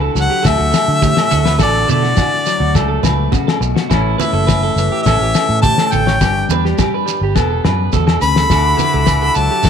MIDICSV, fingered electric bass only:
0, 0, Header, 1, 2, 480
1, 0, Start_track
1, 0, Key_signature, 2, "major"
1, 0, Tempo, 575264
1, 1336, Time_signature, 4, 2, 24, 8
1, 8091, End_track
2, 0, Start_track
2, 0, Title_t, "Fingered electric bass"
2, 0, Program_c, 0, 33
2, 126, Note_on_c, 0, 37, 106
2, 229, Note_off_c, 0, 37, 0
2, 375, Note_on_c, 0, 38, 110
2, 475, Note_off_c, 0, 38, 0
2, 497, Note_on_c, 0, 38, 87
2, 593, Note_off_c, 0, 38, 0
2, 735, Note_on_c, 0, 50, 94
2, 932, Note_off_c, 0, 50, 0
2, 1102, Note_on_c, 0, 38, 99
2, 1330, Note_on_c, 0, 33, 105
2, 1342, Note_off_c, 0, 38, 0
2, 1528, Note_off_c, 0, 33, 0
2, 1576, Note_on_c, 0, 47, 85
2, 1771, Note_off_c, 0, 47, 0
2, 2170, Note_on_c, 0, 38, 88
2, 2294, Note_on_c, 0, 37, 107
2, 2307, Note_off_c, 0, 38, 0
2, 2490, Note_off_c, 0, 37, 0
2, 2531, Note_on_c, 0, 37, 103
2, 2728, Note_off_c, 0, 37, 0
2, 3009, Note_on_c, 0, 35, 91
2, 3112, Note_off_c, 0, 35, 0
2, 3259, Note_on_c, 0, 33, 100
2, 3453, Note_off_c, 0, 33, 0
2, 3612, Note_on_c, 0, 30, 111
2, 3905, Note_off_c, 0, 30, 0
2, 3971, Note_on_c, 0, 30, 107
2, 4073, Note_off_c, 0, 30, 0
2, 4222, Note_on_c, 0, 33, 108
2, 4319, Note_off_c, 0, 33, 0
2, 4342, Note_on_c, 0, 33, 85
2, 4436, Note_off_c, 0, 33, 0
2, 4580, Note_on_c, 0, 45, 92
2, 4774, Note_off_c, 0, 45, 0
2, 4943, Note_on_c, 0, 33, 94
2, 5179, Note_off_c, 0, 33, 0
2, 5179, Note_on_c, 0, 31, 102
2, 5372, Note_off_c, 0, 31, 0
2, 5415, Note_on_c, 0, 40, 95
2, 5610, Note_off_c, 0, 40, 0
2, 6017, Note_on_c, 0, 31, 83
2, 6136, Note_off_c, 0, 31, 0
2, 6136, Note_on_c, 0, 28, 103
2, 6330, Note_off_c, 0, 28, 0
2, 6379, Note_on_c, 0, 42, 89
2, 6593, Note_off_c, 0, 42, 0
2, 6617, Note_on_c, 0, 40, 88
2, 6832, Note_off_c, 0, 40, 0
2, 6856, Note_on_c, 0, 38, 87
2, 7071, Note_off_c, 0, 38, 0
2, 7094, Note_on_c, 0, 38, 94
2, 7289, Note_off_c, 0, 38, 0
2, 7460, Note_on_c, 0, 37, 99
2, 7749, Note_off_c, 0, 37, 0
2, 7810, Note_on_c, 0, 37, 97
2, 7912, Note_off_c, 0, 37, 0
2, 8052, Note_on_c, 0, 38, 106
2, 8091, Note_off_c, 0, 38, 0
2, 8091, End_track
0, 0, End_of_file